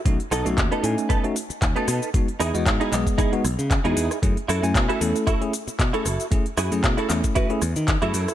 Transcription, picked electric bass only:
X:1
M:4/4
L:1/16
Q:"Swing 16ths" 1/4=115
K:F#dor
V:1 name="Picked electric bass" clef=bass
B,,, z B,,, B,,, D,, z A,, z4 z D,, z B,, z | z2 E,, E,, G,, z B,,, z3 B,,, C,2 E,, E,, z | F,, z F,, F,, B,, z E,, z4 z B,, z F,,, z | z2 F,, F,, B,, z E,, z3 E,, D,2 F,, F,, z |]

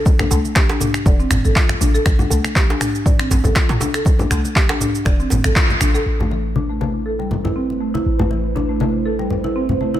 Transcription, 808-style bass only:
X:1
M:4/4
L:1/16
Q:"Swing 16ths" 1/4=120
K:Am
V:1 name="808-style bass" clef=bass
z2 C,, z4 z E,,, z G,,, A,,, z2 A,,, z | A,,, z C,, z6 z A,,, A,,, z A,, z2 | z2 C,, z4 z E,,, z G,,, A,,, z2 A,,, z | A,,,16 |
A,,,16 |]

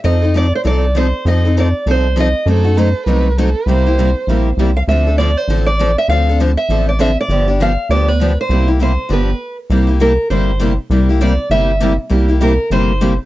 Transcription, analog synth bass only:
X:1
M:4/4
L:1/8
Q:"Swing" 1/4=199
K:Cmix
V:1 name="Analog synth bass" clef=bass
F,,4 C,,4 | F,,4 C,,4 | ^F,,4 C,,4 | C,,4 B,,,2 C,,2 |
D,,4 A,,,4 | D,,4 A,,,4 | G,,,4 D,,4 | C,,4 G,,,2 z2 |
C,,4 G,,,4 | C,,4 G,,,4 | C,,4 G,,,4 |]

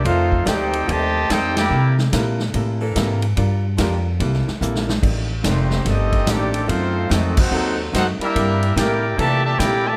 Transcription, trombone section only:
X:1
M:4/4
L:1/8
Q:"Swing" 1/4=145
K:Flyd
V:1 name="Trombone section"
[A,CF]2 [C_EG]2 [C,_E,A,]2 [CEG] [_B,=EG]- | [_B,EG] z6 z | z8 | z2 [_E,A,C]2 [A,C_E]2 [E,A,D]2 |
[A,CF]2 [A,C^D] [CD^F]2 z [CDF] [G,_B,E]- | [G,_B,E]2 [EG_B]2 [_B,,E,A,] [B,,E,A,] [B,EG] [B,,E,A,] |]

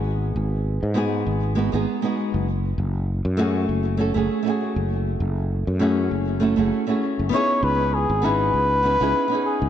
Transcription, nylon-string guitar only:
X:1
M:4/4
L:1/16
Q:"Swing 16ths" 1/4=99
K:C#m
V:1 name="Nylon-string guitar"
[G,B,DFG]6 [G,B,DFG]4 [G,B,DFB] [G,B,DFG]2 [G,B,DFG]3 | z6 [A,CEFG]4 [A,CEFA] [A,CEFG]2 [A,CEFG]3- | [A,CEFG]6 [A,CEFG]4 [A,CEFA] [A,CEFG]2 [A,CEFG]3 | [B,CDEG]6 [B,CDEG]4 [B,CDEB] [B,CDEG]2 [B,CDEG]3 |]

